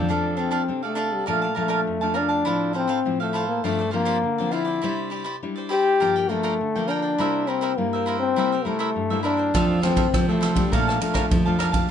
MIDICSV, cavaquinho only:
0, 0, Header, 1, 2, 480
1, 0, Start_track
1, 0, Key_signature, -1, "major"
1, 0, Tempo, 589971
1, 81, Time_signature, 4, 2, 24, 8
1, 9688, End_track
2, 0, Start_track
2, 0, Title_t, "Cavaquinho"
2, 0, Program_c, 0, 24
2, 70, Note_on_c, 0, 62, 71
2, 79, Note_on_c, 0, 69, 68
2, 86, Note_on_c, 0, 74, 81
2, 90, Note_on_c, 0, 77, 80
2, 288, Note_off_c, 0, 62, 0
2, 295, Note_off_c, 0, 69, 0
2, 298, Note_on_c, 0, 62, 56
2, 303, Note_off_c, 0, 74, 0
2, 305, Note_on_c, 0, 69, 55
2, 308, Note_off_c, 0, 77, 0
2, 313, Note_on_c, 0, 74, 55
2, 318, Note_on_c, 0, 77, 54
2, 403, Note_off_c, 0, 62, 0
2, 408, Note_off_c, 0, 69, 0
2, 409, Note_off_c, 0, 74, 0
2, 412, Note_on_c, 0, 62, 75
2, 416, Note_off_c, 0, 77, 0
2, 418, Note_on_c, 0, 69, 76
2, 418, Note_on_c, 0, 74, 76
2, 426, Note_on_c, 0, 77, 85
2, 501, Note_off_c, 0, 62, 0
2, 503, Note_off_c, 0, 69, 0
2, 504, Note_off_c, 0, 74, 0
2, 507, Note_off_c, 0, 77, 0
2, 672, Note_on_c, 0, 77, 46
2, 682, Note_on_c, 0, 74, 43
2, 691, Note_on_c, 0, 69, 33
2, 771, Note_off_c, 0, 69, 0
2, 775, Note_on_c, 0, 62, 69
2, 780, Note_off_c, 0, 74, 0
2, 781, Note_on_c, 0, 69, 84
2, 785, Note_off_c, 0, 77, 0
2, 790, Note_on_c, 0, 74, 84
2, 794, Note_on_c, 0, 77, 76
2, 1021, Note_off_c, 0, 62, 0
2, 1023, Note_off_c, 0, 74, 0
2, 1024, Note_off_c, 0, 69, 0
2, 1024, Note_on_c, 0, 70, 62
2, 1031, Note_off_c, 0, 77, 0
2, 1033, Note_on_c, 0, 74, 78
2, 1039, Note_on_c, 0, 77, 77
2, 1044, Note_on_c, 0, 81, 75
2, 1143, Note_off_c, 0, 81, 0
2, 1146, Note_off_c, 0, 70, 0
2, 1150, Note_off_c, 0, 74, 0
2, 1153, Note_off_c, 0, 77, 0
2, 1153, Note_on_c, 0, 81, 49
2, 1167, Note_on_c, 0, 77, 39
2, 1173, Note_on_c, 0, 74, 42
2, 1259, Note_off_c, 0, 74, 0
2, 1259, Note_on_c, 0, 70, 51
2, 1265, Note_off_c, 0, 77, 0
2, 1269, Note_on_c, 0, 74, 51
2, 1270, Note_off_c, 0, 81, 0
2, 1275, Note_on_c, 0, 77, 45
2, 1279, Note_on_c, 0, 81, 52
2, 1358, Note_off_c, 0, 70, 0
2, 1366, Note_off_c, 0, 74, 0
2, 1368, Note_on_c, 0, 70, 72
2, 1369, Note_off_c, 0, 77, 0
2, 1373, Note_off_c, 0, 81, 0
2, 1375, Note_on_c, 0, 74, 73
2, 1379, Note_on_c, 0, 77, 80
2, 1383, Note_on_c, 0, 81, 71
2, 1460, Note_off_c, 0, 70, 0
2, 1464, Note_off_c, 0, 74, 0
2, 1466, Note_off_c, 0, 77, 0
2, 1468, Note_off_c, 0, 81, 0
2, 1635, Note_on_c, 0, 81, 50
2, 1646, Note_on_c, 0, 77, 40
2, 1654, Note_on_c, 0, 74, 38
2, 1736, Note_off_c, 0, 74, 0
2, 1740, Note_on_c, 0, 70, 67
2, 1741, Note_off_c, 0, 77, 0
2, 1746, Note_on_c, 0, 74, 68
2, 1749, Note_off_c, 0, 81, 0
2, 1751, Note_on_c, 0, 77, 69
2, 1759, Note_on_c, 0, 81, 74
2, 1850, Note_off_c, 0, 81, 0
2, 1857, Note_off_c, 0, 77, 0
2, 1860, Note_on_c, 0, 81, 47
2, 1864, Note_off_c, 0, 70, 0
2, 1867, Note_off_c, 0, 74, 0
2, 1867, Note_on_c, 0, 77, 40
2, 1877, Note_on_c, 0, 74, 35
2, 1985, Note_off_c, 0, 81, 0
2, 1988, Note_off_c, 0, 77, 0
2, 1993, Note_off_c, 0, 74, 0
2, 1993, Note_on_c, 0, 64, 77
2, 2000, Note_on_c, 0, 69, 63
2, 2004, Note_on_c, 0, 72, 76
2, 2010, Note_on_c, 0, 77, 87
2, 2213, Note_off_c, 0, 64, 0
2, 2222, Note_off_c, 0, 69, 0
2, 2223, Note_on_c, 0, 64, 45
2, 2227, Note_off_c, 0, 72, 0
2, 2232, Note_on_c, 0, 69, 53
2, 2234, Note_off_c, 0, 77, 0
2, 2237, Note_on_c, 0, 72, 55
2, 2244, Note_on_c, 0, 77, 63
2, 2328, Note_off_c, 0, 64, 0
2, 2335, Note_off_c, 0, 69, 0
2, 2338, Note_on_c, 0, 64, 61
2, 2340, Note_off_c, 0, 72, 0
2, 2343, Note_off_c, 0, 77, 0
2, 2345, Note_on_c, 0, 69, 65
2, 2350, Note_on_c, 0, 72, 73
2, 2353, Note_on_c, 0, 77, 86
2, 2426, Note_off_c, 0, 64, 0
2, 2430, Note_off_c, 0, 69, 0
2, 2432, Note_off_c, 0, 72, 0
2, 2434, Note_off_c, 0, 77, 0
2, 2602, Note_on_c, 0, 77, 42
2, 2614, Note_on_c, 0, 72, 40
2, 2622, Note_on_c, 0, 69, 37
2, 2708, Note_off_c, 0, 69, 0
2, 2708, Note_on_c, 0, 64, 72
2, 2715, Note_off_c, 0, 72, 0
2, 2716, Note_off_c, 0, 77, 0
2, 2718, Note_on_c, 0, 69, 71
2, 2725, Note_on_c, 0, 72, 69
2, 2729, Note_on_c, 0, 77, 89
2, 2950, Note_off_c, 0, 64, 0
2, 2955, Note_off_c, 0, 69, 0
2, 2958, Note_off_c, 0, 72, 0
2, 2960, Note_off_c, 0, 77, 0
2, 2960, Note_on_c, 0, 65, 70
2, 2966, Note_on_c, 0, 67, 76
2, 2970, Note_on_c, 0, 72, 77
2, 2979, Note_on_c, 0, 74, 83
2, 3071, Note_off_c, 0, 74, 0
2, 3075, Note_off_c, 0, 65, 0
2, 3078, Note_off_c, 0, 67, 0
2, 3081, Note_off_c, 0, 72, 0
2, 3081, Note_on_c, 0, 74, 49
2, 3091, Note_on_c, 0, 72, 45
2, 3098, Note_on_c, 0, 67, 38
2, 3181, Note_off_c, 0, 67, 0
2, 3182, Note_on_c, 0, 65, 57
2, 3188, Note_off_c, 0, 72, 0
2, 3190, Note_on_c, 0, 67, 51
2, 3196, Note_off_c, 0, 74, 0
2, 3198, Note_on_c, 0, 72, 60
2, 3205, Note_on_c, 0, 74, 55
2, 3288, Note_off_c, 0, 65, 0
2, 3293, Note_off_c, 0, 67, 0
2, 3297, Note_off_c, 0, 72, 0
2, 3297, Note_off_c, 0, 74, 0
2, 3298, Note_on_c, 0, 65, 84
2, 3303, Note_on_c, 0, 67, 81
2, 3307, Note_on_c, 0, 72, 80
2, 3307, Note_on_c, 0, 74, 78
2, 3387, Note_off_c, 0, 65, 0
2, 3390, Note_off_c, 0, 67, 0
2, 3391, Note_off_c, 0, 72, 0
2, 3391, Note_off_c, 0, 74, 0
2, 3566, Note_on_c, 0, 74, 56
2, 3576, Note_on_c, 0, 72, 43
2, 3588, Note_on_c, 0, 67, 36
2, 3672, Note_off_c, 0, 67, 0
2, 3673, Note_on_c, 0, 65, 66
2, 3679, Note_off_c, 0, 72, 0
2, 3679, Note_off_c, 0, 74, 0
2, 3681, Note_on_c, 0, 67, 73
2, 3689, Note_on_c, 0, 72, 70
2, 3694, Note_on_c, 0, 74, 75
2, 3770, Note_off_c, 0, 74, 0
2, 3780, Note_on_c, 0, 74, 54
2, 3782, Note_off_c, 0, 72, 0
2, 3791, Note_off_c, 0, 67, 0
2, 3791, Note_on_c, 0, 72, 43
2, 3792, Note_off_c, 0, 65, 0
2, 3801, Note_on_c, 0, 67, 44
2, 3906, Note_off_c, 0, 74, 0
2, 3911, Note_off_c, 0, 72, 0
2, 3916, Note_off_c, 0, 67, 0
2, 3917, Note_on_c, 0, 64, 73
2, 3925, Note_on_c, 0, 67, 72
2, 3934, Note_on_c, 0, 72, 80
2, 3939, Note_on_c, 0, 74, 83
2, 4139, Note_off_c, 0, 64, 0
2, 4148, Note_off_c, 0, 67, 0
2, 4148, Note_on_c, 0, 64, 52
2, 4151, Note_off_c, 0, 72, 0
2, 4157, Note_off_c, 0, 74, 0
2, 4158, Note_on_c, 0, 67, 57
2, 4161, Note_on_c, 0, 72, 53
2, 4167, Note_on_c, 0, 74, 56
2, 4255, Note_off_c, 0, 64, 0
2, 4258, Note_off_c, 0, 67, 0
2, 4265, Note_on_c, 0, 64, 70
2, 4266, Note_off_c, 0, 72, 0
2, 4267, Note_off_c, 0, 74, 0
2, 4268, Note_on_c, 0, 67, 74
2, 4275, Note_on_c, 0, 72, 82
2, 4277, Note_on_c, 0, 74, 83
2, 4350, Note_off_c, 0, 64, 0
2, 4352, Note_off_c, 0, 67, 0
2, 4356, Note_off_c, 0, 72, 0
2, 4356, Note_off_c, 0, 74, 0
2, 4520, Note_on_c, 0, 74, 46
2, 4534, Note_on_c, 0, 72, 43
2, 4542, Note_on_c, 0, 67, 35
2, 4629, Note_on_c, 0, 64, 83
2, 4630, Note_off_c, 0, 67, 0
2, 4636, Note_off_c, 0, 74, 0
2, 4638, Note_off_c, 0, 72, 0
2, 4639, Note_on_c, 0, 67, 77
2, 4648, Note_on_c, 0, 72, 80
2, 4648, Note_on_c, 0, 74, 89
2, 4870, Note_off_c, 0, 64, 0
2, 4875, Note_off_c, 0, 67, 0
2, 4879, Note_off_c, 0, 72, 0
2, 4880, Note_off_c, 0, 74, 0
2, 4882, Note_on_c, 0, 65, 76
2, 4888, Note_on_c, 0, 70, 73
2, 4895, Note_on_c, 0, 74, 85
2, 4899, Note_on_c, 0, 79, 74
2, 4996, Note_off_c, 0, 65, 0
2, 4999, Note_off_c, 0, 79, 0
2, 5000, Note_off_c, 0, 70, 0
2, 5003, Note_off_c, 0, 74, 0
2, 5009, Note_on_c, 0, 79, 52
2, 5020, Note_on_c, 0, 74, 49
2, 5030, Note_on_c, 0, 70, 46
2, 5112, Note_off_c, 0, 70, 0
2, 5116, Note_on_c, 0, 65, 47
2, 5120, Note_off_c, 0, 79, 0
2, 5121, Note_off_c, 0, 74, 0
2, 5122, Note_on_c, 0, 70, 54
2, 5131, Note_on_c, 0, 74, 53
2, 5136, Note_on_c, 0, 79, 48
2, 5224, Note_off_c, 0, 65, 0
2, 5227, Note_off_c, 0, 70, 0
2, 5230, Note_off_c, 0, 74, 0
2, 5234, Note_on_c, 0, 65, 79
2, 5237, Note_off_c, 0, 79, 0
2, 5237, Note_on_c, 0, 70, 86
2, 5240, Note_on_c, 0, 74, 86
2, 5247, Note_on_c, 0, 79, 80
2, 5315, Note_off_c, 0, 65, 0
2, 5316, Note_off_c, 0, 70, 0
2, 5318, Note_off_c, 0, 74, 0
2, 5321, Note_off_c, 0, 79, 0
2, 5496, Note_on_c, 0, 79, 48
2, 5509, Note_on_c, 0, 74, 45
2, 5515, Note_on_c, 0, 70, 39
2, 5591, Note_off_c, 0, 70, 0
2, 5594, Note_on_c, 0, 65, 62
2, 5597, Note_off_c, 0, 74, 0
2, 5601, Note_on_c, 0, 70, 69
2, 5603, Note_off_c, 0, 79, 0
2, 5607, Note_on_c, 0, 74, 66
2, 5616, Note_on_c, 0, 79, 77
2, 5704, Note_off_c, 0, 79, 0
2, 5712, Note_off_c, 0, 65, 0
2, 5714, Note_on_c, 0, 79, 46
2, 5715, Note_off_c, 0, 74, 0
2, 5716, Note_off_c, 0, 70, 0
2, 5725, Note_on_c, 0, 74, 46
2, 5736, Note_on_c, 0, 70, 38
2, 5832, Note_off_c, 0, 79, 0
2, 5838, Note_off_c, 0, 74, 0
2, 5843, Note_off_c, 0, 70, 0
2, 5845, Note_on_c, 0, 64, 79
2, 5854, Note_on_c, 0, 70, 76
2, 5861, Note_on_c, 0, 72, 73
2, 5865, Note_on_c, 0, 76, 74
2, 6068, Note_off_c, 0, 64, 0
2, 6075, Note_off_c, 0, 70, 0
2, 6078, Note_on_c, 0, 64, 52
2, 6080, Note_off_c, 0, 72, 0
2, 6085, Note_on_c, 0, 70, 50
2, 6087, Note_off_c, 0, 76, 0
2, 6090, Note_on_c, 0, 72, 51
2, 6098, Note_on_c, 0, 76, 56
2, 6182, Note_off_c, 0, 64, 0
2, 6190, Note_off_c, 0, 70, 0
2, 6192, Note_off_c, 0, 72, 0
2, 6192, Note_on_c, 0, 64, 74
2, 6198, Note_off_c, 0, 76, 0
2, 6200, Note_on_c, 0, 70, 71
2, 6202, Note_on_c, 0, 72, 83
2, 6208, Note_on_c, 0, 76, 80
2, 6273, Note_off_c, 0, 64, 0
2, 6277, Note_off_c, 0, 70, 0
2, 6278, Note_off_c, 0, 72, 0
2, 6281, Note_off_c, 0, 76, 0
2, 6451, Note_on_c, 0, 76, 48
2, 6463, Note_on_c, 0, 72, 42
2, 6470, Note_on_c, 0, 70, 38
2, 6556, Note_off_c, 0, 70, 0
2, 6557, Note_on_c, 0, 64, 69
2, 6560, Note_off_c, 0, 76, 0
2, 6561, Note_off_c, 0, 72, 0
2, 6566, Note_on_c, 0, 70, 81
2, 6571, Note_on_c, 0, 72, 73
2, 6575, Note_on_c, 0, 76, 84
2, 6793, Note_off_c, 0, 64, 0
2, 6797, Note_off_c, 0, 70, 0
2, 6800, Note_off_c, 0, 72, 0
2, 6802, Note_off_c, 0, 76, 0
2, 6804, Note_on_c, 0, 64, 77
2, 6813, Note_on_c, 0, 70, 78
2, 6819, Note_on_c, 0, 72, 78
2, 6826, Note_on_c, 0, 76, 75
2, 6917, Note_off_c, 0, 64, 0
2, 6921, Note_off_c, 0, 70, 0
2, 6924, Note_off_c, 0, 72, 0
2, 6925, Note_off_c, 0, 76, 0
2, 6935, Note_on_c, 0, 76, 55
2, 6943, Note_on_c, 0, 72, 45
2, 6950, Note_on_c, 0, 70, 45
2, 7037, Note_off_c, 0, 70, 0
2, 7037, Note_on_c, 0, 64, 49
2, 7041, Note_off_c, 0, 72, 0
2, 7042, Note_off_c, 0, 76, 0
2, 7046, Note_on_c, 0, 70, 43
2, 7051, Note_on_c, 0, 72, 52
2, 7058, Note_on_c, 0, 76, 44
2, 7141, Note_off_c, 0, 64, 0
2, 7146, Note_off_c, 0, 70, 0
2, 7150, Note_off_c, 0, 72, 0
2, 7151, Note_off_c, 0, 76, 0
2, 7151, Note_on_c, 0, 64, 73
2, 7156, Note_on_c, 0, 70, 67
2, 7160, Note_on_c, 0, 72, 71
2, 7161, Note_on_c, 0, 76, 87
2, 7232, Note_off_c, 0, 64, 0
2, 7234, Note_off_c, 0, 70, 0
2, 7236, Note_off_c, 0, 72, 0
2, 7237, Note_off_c, 0, 76, 0
2, 7406, Note_on_c, 0, 76, 53
2, 7418, Note_on_c, 0, 72, 44
2, 7429, Note_on_c, 0, 70, 41
2, 7507, Note_off_c, 0, 70, 0
2, 7508, Note_on_c, 0, 64, 63
2, 7514, Note_off_c, 0, 72, 0
2, 7517, Note_off_c, 0, 76, 0
2, 7517, Note_on_c, 0, 70, 66
2, 7524, Note_on_c, 0, 72, 69
2, 7526, Note_on_c, 0, 76, 75
2, 7614, Note_off_c, 0, 76, 0
2, 7623, Note_off_c, 0, 72, 0
2, 7624, Note_on_c, 0, 76, 44
2, 7628, Note_off_c, 0, 64, 0
2, 7632, Note_off_c, 0, 70, 0
2, 7633, Note_on_c, 0, 72, 43
2, 7642, Note_on_c, 0, 70, 44
2, 7746, Note_off_c, 0, 76, 0
2, 7750, Note_off_c, 0, 72, 0
2, 7755, Note_off_c, 0, 70, 0
2, 7761, Note_on_c, 0, 65, 85
2, 7768, Note_on_c, 0, 69, 81
2, 7773, Note_on_c, 0, 72, 77
2, 7781, Note_on_c, 0, 76, 82
2, 7981, Note_off_c, 0, 65, 0
2, 7990, Note_off_c, 0, 69, 0
2, 7990, Note_on_c, 0, 65, 49
2, 7997, Note_off_c, 0, 72, 0
2, 8000, Note_on_c, 0, 69, 59
2, 8004, Note_off_c, 0, 76, 0
2, 8006, Note_on_c, 0, 72, 51
2, 8013, Note_on_c, 0, 76, 53
2, 8097, Note_off_c, 0, 65, 0
2, 8100, Note_off_c, 0, 69, 0
2, 8104, Note_off_c, 0, 72, 0
2, 8106, Note_on_c, 0, 65, 82
2, 8107, Note_off_c, 0, 76, 0
2, 8110, Note_on_c, 0, 69, 76
2, 8114, Note_on_c, 0, 72, 81
2, 8117, Note_on_c, 0, 76, 75
2, 8189, Note_off_c, 0, 65, 0
2, 8191, Note_off_c, 0, 69, 0
2, 8193, Note_off_c, 0, 72, 0
2, 8194, Note_off_c, 0, 76, 0
2, 8370, Note_on_c, 0, 76, 42
2, 8381, Note_on_c, 0, 72, 43
2, 8386, Note_on_c, 0, 69, 40
2, 8465, Note_off_c, 0, 69, 0
2, 8467, Note_on_c, 0, 65, 78
2, 8469, Note_off_c, 0, 72, 0
2, 8475, Note_on_c, 0, 69, 70
2, 8476, Note_off_c, 0, 76, 0
2, 8479, Note_on_c, 0, 72, 73
2, 8486, Note_on_c, 0, 76, 77
2, 8707, Note_off_c, 0, 65, 0
2, 8711, Note_off_c, 0, 69, 0
2, 8713, Note_off_c, 0, 72, 0
2, 8716, Note_off_c, 0, 76, 0
2, 8720, Note_on_c, 0, 70, 63
2, 8730, Note_on_c, 0, 74, 68
2, 8738, Note_on_c, 0, 77, 84
2, 8741, Note_on_c, 0, 81, 80
2, 8833, Note_off_c, 0, 70, 0
2, 8837, Note_off_c, 0, 81, 0
2, 8838, Note_off_c, 0, 74, 0
2, 8842, Note_off_c, 0, 77, 0
2, 8847, Note_on_c, 0, 81, 50
2, 8861, Note_on_c, 0, 77, 43
2, 8868, Note_on_c, 0, 74, 39
2, 8947, Note_off_c, 0, 74, 0
2, 8951, Note_on_c, 0, 70, 46
2, 8955, Note_off_c, 0, 77, 0
2, 8957, Note_off_c, 0, 81, 0
2, 8957, Note_on_c, 0, 74, 45
2, 8965, Note_on_c, 0, 77, 55
2, 8971, Note_on_c, 0, 81, 55
2, 9052, Note_off_c, 0, 70, 0
2, 9056, Note_off_c, 0, 74, 0
2, 9061, Note_off_c, 0, 77, 0
2, 9062, Note_on_c, 0, 70, 75
2, 9063, Note_off_c, 0, 81, 0
2, 9066, Note_on_c, 0, 74, 82
2, 9071, Note_on_c, 0, 77, 83
2, 9072, Note_on_c, 0, 81, 82
2, 9146, Note_off_c, 0, 70, 0
2, 9148, Note_off_c, 0, 74, 0
2, 9151, Note_off_c, 0, 77, 0
2, 9152, Note_off_c, 0, 81, 0
2, 9319, Note_on_c, 0, 81, 47
2, 9328, Note_on_c, 0, 77, 48
2, 9339, Note_on_c, 0, 74, 39
2, 9423, Note_off_c, 0, 74, 0
2, 9427, Note_on_c, 0, 70, 67
2, 9429, Note_off_c, 0, 77, 0
2, 9432, Note_off_c, 0, 81, 0
2, 9432, Note_on_c, 0, 74, 68
2, 9439, Note_on_c, 0, 77, 70
2, 9446, Note_on_c, 0, 81, 71
2, 9526, Note_off_c, 0, 81, 0
2, 9535, Note_off_c, 0, 77, 0
2, 9535, Note_on_c, 0, 81, 49
2, 9545, Note_on_c, 0, 77, 46
2, 9546, Note_off_c, 0, 70, 0
2, 9547, Note_off_c, 0, 74, 0
2, 9557, Note_on_c, 0, 74, 41
2, 9660, Note_off_c, 0, 81, 0
2, 9665, Note_off_c, 0, 77, 0
2, 9671, Note_off_c, 0, 74, 0
2, 9688, End_track
0, 0, End_of_file